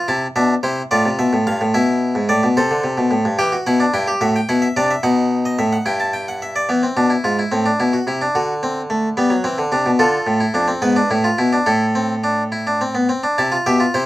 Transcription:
0.08 C3 E4 A5
0.36 B2 D4 E5
0.63 C3 E4 C5
0.91 A2 F4 D5
1.05 C3
1.19 B2 E5
1.33 A2
1.47 G2 F5
1.61 A2
1.74 B2 E4 E5
2.15 G#2
2.29 A2 D5
2.43 B2
2.57 C3 A4 C5
2.71 D3
2.84 C3
2.98 B2
3.11 A2
3.25 G2
3.39 E3 G4 G5
3.52 F#4
3.66 B2 E4 F#5
3.80 D4
3.94 G2 E4 G5
4.08 G4
4.21 A2 F#4 E5
4.36 G5
4.49 B2 E4 F#5
4.62 E5
4.77 C3 D4 D5
4.91 E5
5.03 B2 D#4 F#5
5.45 D#5
5.59 A2 E5
5.73 F#5
5.86 G2 E4 G5
6.00 A5
6.13 G5
6.28 F#5
6.42 E5
6.56 D5
6.69 E3 B3
6.83 C4
6.97 B2 D4
7.10 E4
7.24 G#2 F4
7.39 E4
7.52 A2 C4
7.66 D4
7.80 B2 E4
7.93 F#4
8.07 C3 E4
8.21 D4
8.35 D3 F#4
8.63 C4
8.90 A3
9.17 G3 B3
9.30 F#3
9.44 E3 C4
9.58 D3
9.72 C3 D4
9.86 B2
9.99 D3 F4 A4
10.27 A2
10.40 E4
10.54 F2 D4
10.68 C4
10.82 G#2 B3 B4
10.96 D4
11.10 A2 E4
11.24 F4
11.38 B2 E4
11.53 D4
11.66 A2 E4 A4
11.95 C4
12.24 D4
12.52 E4
12.67 D4
12.81 C4
12.95 B3
13.09 C4
13.23 D4
13.38 C3 E4 A5
13.52 F4
13.66 B2 G4 E5
13.80 F4
13.94 C3 E4 C5

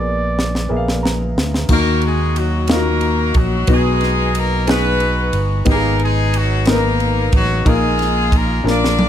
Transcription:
Already playing: A#1 A#2 B3 G#4 A#4 D5
0.39 snare
0.55 snare
0.69 A#1 B3 G#4 A#4 E5
0.77 F5
0.88 snare
1.03 A#5, snare
1.36 D2, snare
1.54 snare
1.69 D#2 D#3 A#3 D#4 F#4 A#4, kick, crash
2.02 ride
2.06 G#3 G#4
2.36 F#3 F#4, ride
2.68 A#3 D#4 F4 F#4 A#4, snare, ride
2.76 F#4
3.01 ride
3.34 A#1 F#3 F#4, kick, ride
3.67 B1 B2 B3 D#4 F#4, kick, ride
3.72 G#3 B3 D#4 G#4
4.01 snare, ride
4.35 ride
4.39 A#3 A#4
4.67 B3 D#4 F#4 G#4 B4, snare, ride
5.00 ride
5.33 G1, ride
5.65 G#1 G#2 B3 D#4 G4, kick, ride
5.70 A#3 G#4 A#4
5.99 ride
6.04 G#3 G#4
6.34 F#3 F#4, ride
6.65 A#3 D#4 A#4, snare, ride
6.70 A#3 B3 A#4
7.00 ride
7.32 A1 F#3 F#4, kick, ride
7.65 A#1 A#2 G#3 D#4 F4 G#4 A#4, kick, ride
7.99 snare, ride
8.32 kick, ride
8.37 A#3 A#4
8.64 A#1 A#3 D4 F4 A#4, snare
8.70 D4 D5
8.84 snare
8.99 high tom

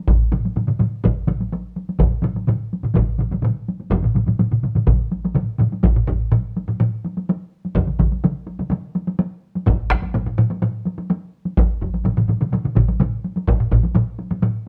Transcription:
0.08 taiko, taiko low-mid, taiko mid, taiko high
0.32 taiko low-mid, taiko mid, taiko high
0.45 taiko high
0.56 taiko low-mid, taiko mid, taiko high
0.68 taiko low-mid, taiko mid
0.79 taiko low-mid, taiko mid, taiko high
1.04 taiko, taiko low-mid, taiko mid, taiko high
1.27 taiko low-mid, taiko mid, taiko high
1.40 taiko high
1.52 taiko high
1.76 taiko high
1.89 taiko high
1.99 taiko, taiko low-mid, taiko mid, taiko high
2.23 taiko low-mid, taiko mid, taiko high
2.36 taiko high
2.47 taiko low-mid, taiko mid, taiko high
2.73 taiko high
2.83 taiko low-mid, taiko mid
2.95 taiko, taiko low-mid, taiko mid, taiko high
3.18 taiko low-mid, taiko mid, taiko high
3.31 taiko low-mid, taiko mid, taiko high
3.42 taiko low-mid, taiko mid, taiko high
3.68 taiko high
3.81 taiko high
3.90 taiko, taiko low-mid, taiko mid, taiko high
4.02 taiko low-mid, taiko mid
4.15 taiko low-mid, taiko mid, taiko high
4.26 taiko low-mid, taiko mid, taiko high
4.39 taiko low-mid, taiko mid, taiko high
4.51 taiko low-mid, taiko mid
4.63 taiko low-mid, taiko mid, taiko high
4.75 taiko low-mid, taiko mid, taiko high
4.87 taiko, taiko low-mid, taiko mid, taiko high
5.12 taiko high
5.25 taiko high
5.35 taiko low-mid, taiko mid, taiko high
5.58 taiko low-mid, taiko mid, taiko high
5.72 taiko high
5.84 taiko, taiko low-mid, taiko high
5.96 taiko low-mid
6.07 taiko, taiko low-mid, taiko high
6.32 taiko low-mid, taiko high
6.57 taiko high
6.68 taiko low-mid, taiko high
6.80 taiko low-mid, taiko high
7.05 taiko high
7.17 taiko high
7.29 taiko high
7.65 taiko high
7.75 taiko, taiko mid, taiko high
7.87 taiko mid
7.99 taiko, taiko mid, taiko high
8.12 taiko high
8.24 taiko mid, taiko high
8.47 taiko high
8.59 taiko mid, taiko high
8.70 taiko mid, taiko high
8.95 taiko high
9.07 taiko high
9.19 taiko high
9.55 taiko high
9.66 taiko, taiko low-mid, taiko high
9.90 taiko rim, taiko, taiko high
10.02 taiko high
10.14 taiko low-mid, taiko high
10.26 taiko low-mid
10.38 taiko low-mid, taiko high
10.50 taiko high
10.62 taiko low-mid, taiko high
10.85 taiko high
10.98 taiko high
11.10 taiko high
11.45 taiko high
11.57 taiko, taiko high
11.81 taiko, taiko high
11.94 taiko high
12.05 taiko low-mid, taiko mid, taiko high
12.17 taiko low-mid, taiko mid
12.29 taiko low-mid, taiko mid, taiko high
12.41 taiko low-mid, taiko mid, taiko high
12.53 taiko low-mid, taiko mid, taiko high
12.65 taiko low-mid, taiko mid
12.76 taiko, taiko low-mid, taiko mid, taiko high
12.88 taiko high
13.00 taiko low-mid, taiko mid, taiko high
13.24 taiko high
13.36 taiko high
13.47 taiko, taiko low-mid, taiko high
13.60 taiko low-mid
13.71 taiko, taiko low-mid, taiko high
13.83 taiko high
13.95 taiko low-mid, taiko high
14.19 taiko high
14.31 taiko low-mid, taiko high
14.42 taiko low-mid, taiko high

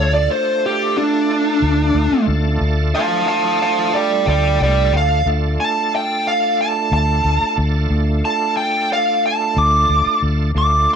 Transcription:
Already playing: D2 A3 D4 F4 A4 C#5
0.14 D5
0.31 C5
0.66 G4
0.97 D4
1.62 D2
1.95 D2
2.28 D2
2.61 D2
2.95 F5 A5
3.28 F5 A5
3.62 F5 A5
3.95 D5 G5
4.27 D2 D5 G5
4.61 C2 D5 G5
4.92 D2
4.97 F5
5.25 D2 A3 D4 F4 A4
5.60 A5
5.96 G5
6.27 F5
6.61 A5
6.92 D2 A5
7.25 D2
7.58 D2
7.90 D2
8.25 A5
8.57 G5
8.93 F5
9.26 A5
9.57 D2 D6
9.89 D2
10.06 muted fingered electric bass stroke
10.22 D2
10.54 D2 A3 D4 F4 A4 D6

